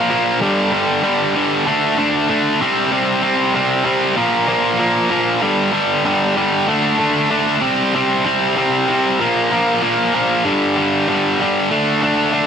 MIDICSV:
0, 0, Header, 1, 2, 480
1, 0, Start_track
1, 0, Key_signature, -2, "minor"
1, 0, Tempo, 628272
1, 304, Time_signature, 4, 2, 24, 8
1, 9525, End_track
2, 0, Start_track
2, 0, Title_t, "Overdriven electric guitar"
2, 0, Program_c, 0, 29
2, 71, Note_on_c, 0, 46, 90
2, 77, Note_on_c, 0, 53, 101
2, 78, Note_on_c, 0, 58, 103
2, 293, Note_off_c, 0, 46, 0
2, 296, Note_off_c, 0, 53, 0
2, 297, Note_off_c, 0, 58, 0
2, 314, Note_on_c, 0, 43, 101
2, 317, Note_on_c, 0, 50, 94
2, 322, Note_on_c, 0, 55, 107
2, 548, Note_off_c, 0, 43, 0
2, 549, Note_off_c, 0, 50, 0
2, 550, Note_off_c, 0, 55, 0
2, 557, Note_on_c, 0, 43, 83
2, 558, Note_on_c, 0, 50, 80
2, 559, Note_on_c, 0, 55, 82
2, 774, Note_off_c, 0, 43, 0
2, 781, Note_off_c, 0, 55, 0
2, 783, Note_off_c, 0, 50, 0
2, 783, Note_on_c, 0, 43, 85
2, 790, Note_on_c, 0, 55, 105
2, 792, Note_on_c, 0, 50, 88
2, 1024, Note_off_c, 0, 43, 0
2, 1024, Note_off_c, 0, 50, 0
2, 1031, Note_off_c, 0, 55, 0
2, 1033, Note_on_c, 0, 43, 93
2, 1034, Note_on_c, 0, 50, 112
2, 1040, Note_on_c, 0, 55, 108
2, 1255, Note_off_c, 0, 43, 0
2, 1255, Note_off_c, 0, 50, 0
2, 1259, Note_off_c, 0, 55, 0
2, 1270, Note_on_c, 0, 50, 104
2, 1274, Note_on_c, 0, 62, 103
2, 1275, Note_on_c, 0, 57, 107
2, 1500, Note_off_c, 0, 50, 0
2, 1507, Note_off_c, 0, 57, 0
2, 1509, Note_off_c, 0, 62, 0
2, 1510, Note_on_c, 0, 50, 96
2, 1516, Note_on_c, 0, 57, 106
2, 1518, Note_on_c, 0, 62, 101
2, 1742, Note_off_c, 0, 57, 0
2, 1743, Note_off_c, 0, 50, 0
2, 1749, Note_off_c, 0, 62, 0
2, 1751, Note_on_c, 0, 57, 77
2, 1752, Note_on_c, 0, 50, 78
2, 1758, Note_on_c, 0, 62, 78
2, 1975, Note_off_c, 0, 50, 0
2, 1975, Note_off_c, 0, 57, 0
2, 1978, Note_off_c, 0, 62, 0
2, 1991, Note_on_c, 0, 48, 94
2, 1997, Note_on_c, 0, 55, 104
2, 2004, Note_on_c, 0, 60, 102
2, 2218, Note_off_c, 0, 48, 0
2, 2223, Note_off_c, 0, 55, 0
2, 2224, Note_off_c, 0, 60, 0
2, 2227, Note_on_c, 0, 48, 95
2, 2233, Note_on_c, 0, 55, 88
2, 2233, Note_on_c, 0, 60, 108
2, 2453, Note_off_c, 0, 48, 0
2, 2457, Note_off_c, 0, 60, 0
2, 2459, Note_off_c, 0, 55, 0
2, 2462, Note_on_c, 0, 48, 77
2, 2466, Note_on_c, 0, 60, 89
2, 2468, Note_on_c, 0, 55, 75
2, 2696, Note_off_c, 0, 48, 0
2, 2701, Note_off_c, 0, 60, 0
2, 2704, Note_off_c, 0, 55, 0
2, 2706, Note_on_c, 0, 48, 88
2, 2710, Note_on_c, 0, 60, 104
2, 2713, Note_on_c, 0, 55, 95
2, 2925, Note_off_c, 0, 48, 0
2, 2933, Note_off_c, 0, 55, 0
2, 2934, Note_on_c, 0, 48, 99
2, 2935, Note_off_c, 0, 60, 0
2, 2942, Note_on_c, 0, 55, 96
2, 2944, Note_on_c, 0, 60, 101
2, 3167, Note_off_c, 0, 48, 0
2, 3171, Note_off_c, 0, 55, 0
2, 3172, Note_off_c, 0, 60, 0
2, 3182, Note_on_c, 0, 46, 99
2, 3186, Note_on_c, 0, 58, 96
2, 3188, Note_on_c, 0, 53, 91
2, 3412, Note_off_c, 0, 46, 0
2, 3413, Note_off_c, 0, 53, 0
2, 3420, Note_off_c, 0, 58, 0
2, 3421, Note_on_c, 0, 46, 96
2, 3422, Note_on_c, 0, 53, 92
2, 3429, Note_on_c, 0, 58, 110
2, 3648, Note_off_c, 0, 46, 0
2, 3656, Note_off_c, 0, 53, 0
2, 3657, Note_off_c, 0, 58, 0
2, 3657, Note_on_c, 0, 46, 81
2, 3665, Note_on_c, 0, 53, 78
2, 3666, Note_on_c, 0, 58, 78
2, 3887, Note_off_c, 0, 46, 0
2, 3889, Note_off_c, 0, 53, 0
2, 3896, Note_on_c, 0, 46, 83
2, 3898, Note_on_c, 0, 53, 95
2, 3901, Note_off_c, 0, 58, 0
2, 3910, Note_on_c, 0, 58, 92
2, 4129, Note_off_c, 0, 46, 0
2, 4130, Note_off_c, 0, 53, 0
2, 4135, Note_off_c, 0, 58, 0
2, 4136, Note_on_c, 0, 50, 106
2, 4137, Note_on_c, 0, 43, 98
2, 4143, Note_on_c, 0, 55, 102
2, 4362, Note_off_c, 0, 43, 0
2, 4366, Note_off_c, 0, 50, 0
2, 4368, Note_off_c, 0, 55, 0
2, 4371, Note_on_c, 0, 43, 68
2, 4375, Note_on_c, 0, 50, 84
2, 4377, Note_on_c, 0, 55, 86
2, 4611, Note_off_c, 0, 43, 0
2, 4614, Note_off_c, 0, 50, 0
2, 4620, Note_off_c, 0, 55, 0
2, 4620, Note_on_c, 0, 43, 82
2, 4624, Note_on_c, 0, 50, 95
2, 4629, Note_on_c, 0, 55, 101
2, 4852, Note_off_c, 0, 50, 0
2, 4857, Note_off_c, 0, 43, 0
2, 4859, Note_off_c, 0, 55, 0
2, 4861, Note_on_c, 0, 50, 91
2, 4866, Note_on_c, 0, 43, 91
2, 4868, Note_on_c, 0, 55, 110
2, 5091, Note_off_c, 0, 50, 0
2, 5093, Note_off_c, 0, 43, 0
2, 5095, Note_off_c, 0, 55, 0
2, 5106, Note_on_c, 0, 50, 94
2, 5107, Note_on_c, 0, 57, 100
2, 5113, Note_on_c, 0, 62, 103
2, 5332, Note_off_c, 0, 50, 0
2, 5334, Note_off_c, 0, 57, 0
2, 5339, Note_off_c, 0, 62, 0
2, 5341, Note_on_c, 0, 50, 101
2, 5343, Note_on_c, 0, 57, 108
2, 5348, Note_on_c, 0, 62, 107
2, 5569, Note_off_c, 0, 50, 0
2, 5571, Note_off_c, 0, 57, 0
2, 5578, Note_off_c, 0, 62, 0
2, 5578, Note_on_c, 0, 50, 77
2, 5580, Note_on_c, 0, 57, 78
2, 5587, Note_on_c, 0, 62, 90
2, 5809, Note_off_c, 0, 50, 0
2, 5811, Note_off_c, 0, 57, 0
2, 5814, Note_off_c, 0, 62, 0
2, 5814, Note_on_c, 0, 48, 109
2, 5817, Note_on_c, 0, 55, 115
2, 5824, Note_on_c, 0, 60, 113
2, 6059, Note_off_c, 0, 48, 0
2, 6066, Note_off_c, 0, 60, 0
2, 6068, Note_off_c, 0, 55, 0
2, 6068, Note_on_c, 0, 48, 91
2, 6076, Note_on_c, 0, 60, 104
2, 6077, Note_on_c, 0, 55, 112
2, 6290, Note_off_c, 0, 48, 0
2, 6297, Note_off_c, 0, 55, 0
2, 6299, Note_on_c, 0, 48, 77
2, 6301, Note_off_c, 0, 60, 0
2, 6306, Note_on_c, 0, 55, 84
2, 6310, Note_on_c, 0, 60, 97
2, 6534, Note_off_c, 0, 48, 0
2, 6537, Note_off_c, 0, 60, 0
2, 6542, Note_off_c, 0, 55, 0
2, 6543, Note_on_c, 0, 48, 81
2, 6547, Note_on_c, 0, 60, 97
2, 6551, Note_on_c, 0, 55, 85
2, 6777, Note_off_c, 0, 48, 0
2, 6784, Note_off_c, 0, 60, 0
2, 6785, Note_off_c, 0, 55, 0
2, 6787, Note_on_c, 0, 48, 97
2, 6794, Note_on_c, 0, 60, 103
2, 6795, Note_on_c, 0, 55, 96
2, 7013, Note_off_c, 0, 48, 0
2, 7016, Note_off_c, 0, 60, 0
2, 7017, Note_off_c, 0, 55, 0
2, 7026, Note_on_c, 0, 46, 95
2, 7034, Note_on_c, 0, 53, 92
2, 7034, Note_on_c, 0, 58, 89
2, 7262, Note_off_c, 0, 53, 0
2, 7264, Note_off_c, 0, 46, 0
2, 7266, Note_off_c, 0, 58, 0
2, 7272, Note_on_c, 0, 53, 103
2, 7273, Note_on_c, 0, 46, 97
2, 7275, Note_on_c, 0, 58, 105
2, 7491, Note_off_c, 0, 46, 0
2, 7493, Note_off_c, 0, 53, 0
2, 7500, Note_on_c, 0, 46, 78
2, 7501, Note_off_c, 0, 58, 0
2, 7502, Note_on_c, 0, 53, 85
2, 7510, Note_on_c, 0, 58, 84
2, 7734, Note_off_c, 0, 46, 0
2, 7740, Note_off_c, 0, 53, 0
2, 7742, Note_off_c, 0, 58, 0
2, 7744, Note_on_c, 0, 46, 96
2, 7749, Note_on_c, 0, 53, 97
2, 7751, Note_on_c, 0, 58, 101
2, 7970, Note_off_c, 0, 46, 0
2, 7973, Note_off_c, 0, 53, 0
2, 7974, Note_off_c, 0, 58, 0
2, 7979, Note_on_c, 0, 43, 93
2, 7980, Note_on_c, 0, 55, 103
2, 7984, Note_on_c, 0, 50, 106
2, 8219, Note_off_c, 0, 43, 0
2, 8227, Note_off_c, 0, 50, 0
2, 8227, Note_off_c, 0, 55, 0
2, 8228, Note_on_c, 0, 43, 81
2, 8236, Note_on_c, 0, 50, 79
2, 8236, Note_on_c, 0, 55, 91
2, 8457, Note_off_c, 0, 43, 0
2, 8462, Note_off_c, 0, 50, 0
2, 8466, Note_on_c, 0, 43, 80
2, 8470, Note_off_c, 0, 55, 0
2, 8471, Note_on_c, 0, 50, 84
2, 8479, Note_on_c, 0, 55, 95
2, 8700, Note_off_c, 0, 43, 0
2, 8709, Note_on_c, 0, 43, 97
2, 8710, Note_off_c, 0, 50, 0
2, 8713, Note_off_c, 0, 55, 0
2, 8719, Note_on_c, 0, 50, 104
2, 8722, Note_on_c, 0, 55, 111
2, 8931, Note_off_c, 0, 43, 0
2, 8936, Note_off_c, 0, 50, 0
2, 8938, Note_off_c, 0, 55, 0
2, 8945, Note_on_c, 0, 57, 89
2, 8950, Note_on_c, 0, 50, 94
2, 8952, Note_on_c, 0, 62, 100
2, 9175, Note_off_c, 0, 50, 0
2, 9180, Note_off_c, 0, 62, 0
2, 9183, Note_off_c, 0, 57, 0
2, 9184, Note_on_c, 0, 50, 94
2, 9189, Note_on_c, 0, 62, 118
2, 9192, Note_on_c, 0, 57, 96
2, 9409, Note_off_c, 0, 57, 0
2, 9410, Note_off_c, 0, 50, 0
2, 9419, Note_on_c, 0, 50, 77
2, 9419, Note_on_c, 0, 57, 80
2, 9420, Note_off_c, 0, 62, 0
2, 9429, Note_on_c, 0, 62, 84
2, 9525, Note_off_c, 0, 50, 0
2, 9525, Note_off_c, 0, 57, 0
2, 9525, Note_off_c, 0, 62, 0
2, 9525, End_track
0, 0, End_of_file